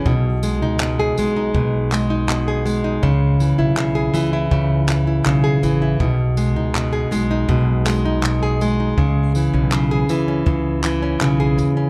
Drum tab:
TB |-x-x-x-x|-x-x-x-x|-x-x-x-x|-x-x-x-x|
CP |--x--xx-|--x--xx-|--x--xx-|--x--xx-|
BD |o---o---|o---o---|o---o---|o---o---|